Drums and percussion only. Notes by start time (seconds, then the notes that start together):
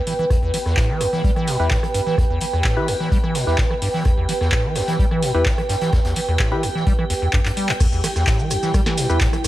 0.07 open hi-hat
0.30 kick, cross-stick, closed hi-hat
0.54 closed hi-hat, open hi-hat
0.66 cross-stick, snare
0.77 kick, snare, clap, closed hi-hat
1.01 cross-stick, closed hi-hat, open hi-hat
1.12 snare
1.24 kick, closed hi-hat
1.36 cross-stick
1.47 snare, closed hi-hat, open hi-hat
1.71 kick, snare, clap, closed hi-hat
1.83 cross-stick, closed hi-hat
1.94 closed hi-hat, open hi-hat
2.06 snare
2.18 kick, cross-stick, closed hi-hat
2.40 closed hi-hat, open hi-hat
2.53 cross-stick
2.64 kick, snare, clap, closed hi-hat
2.88 cross-stick, closed hi-hat, open hi-hat
3.00 snare
3.12 kick, closed hi-hat
3.24 cross-stick
3.35 snare, closed hi-hat, open hi-hat
3.47 snare
3.58 kick, snare, clap, closed hi-hat
3.71 cross-stick
3.82 open hi-hat
3.95 snare
4.05 kick, cross-stick, closed hi-hat
4.28 closed hi-hat, open hi-hat
4.41 cross-stick, snare
4.52 kick, snare, clap, closed hi-hat
4.75 cross-stick, snare, closed hi-hat, open hi-hat
4.88 snare, closed hi-hat
4.99 kick, closed hi-hat
5.11 cross-stick
5.22 snare, closed hi-hat, open hi-hat
5.46 kick, snare, clap, closed hi-hat
5.58 cross-stick, closed hi-hat
5.69 snare, closed hi-hat, open hi-hat
5.81 snare, closed hi-hat
5.92 kick, cross-stick, snare, closed hi-hat
6.05 snare, closed hi-hat
6.16 closed hi-hat, open hi-hat
6.28 cross-stick
6.39 kick, snare, clap, closed hi-hat
6.63 cross-stick, closed hi-hat, open hi-hat
6.76 snare
6.86 kick, closed hi-hat
6.99 cross-stick
7.10 closed hi-hat, open hi-hat
7.33 kick, clap, closed hi-hat
7.45 clap, closed hi-hat
7.57 open hi-hat
7.69 clap, closed hi-hat
7.80 kick, cross-stick, closed hi-hat, crash, shaker
7.93 shaker
8.03 cross-stick, closed hi-hat, open hi-hat, shaker
8.16 cross-stick, snare, shaker
8.27 kick, snare, clap, closed hi-hat, shaker
8.39 shaker
8.50 cross-stick, closed hi-hat, open hi-hat, shaker
8.62 snare, shaker
8.74 kick, cross-stick, closed hi-hat, shaker
8.86 cross-stick, snare, shaker
8.97 snare, closed hi-hat, open hi-hat, shaker
9.10 shaker
9.21 kick, snare, clap, closed hi-hat, shaker
9.33 cross-stick, closed hi-hat, shaker
9.44 cross-stick, open hi-hat, shaker